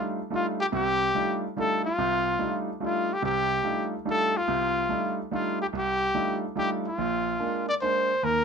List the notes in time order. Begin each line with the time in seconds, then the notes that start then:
Already playing: G3 A3 D4 D#4 F4
0.30 G3 A3 D4 D#4 F4
0.35 F4
0.60 G4
0.72 C2 C3 G4
1.14 G3 A3 D4 D#4 F4
1.57 G3 A3 D4 D#4 F4 A4
1.85 F4
1.98 C2 C3
2.39 G3 A3 D4 D#4 F4
2.80 G3 A3 D4 D#4 F4
2.85 F4
3.14 G4
3.22 C2 C3 G4
3.63 G3 A3 D4 D#4 F4
4.05 G3 A3 D4 D#4 F4
4.10 A4
4.37 F4
4.48 C2 C3
4.89 G3 A3 D4 D#4 F4
5.31 G3 A3 D4 D#4 F4
5.62 G4
5.73 C2
5.78 G4
6.14 G3 A3 D4 D#4 F4
6.56 G3 A3 D4 D#4 F4 G4
6.88 F4
6.98 A#1
7.40 G#3 A#3 D4
7.69 D5
7.81 G#3 A#3 D4 C5
8.23 D#2 A#4